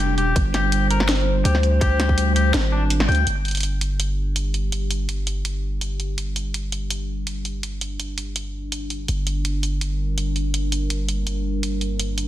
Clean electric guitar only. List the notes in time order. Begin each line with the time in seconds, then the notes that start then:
Already playing: G4
0.18 G4
0.54 G4
0.90 A#4
1.45 G4
1.81 G4
2.36 G4
2.72 D4
3.09 G5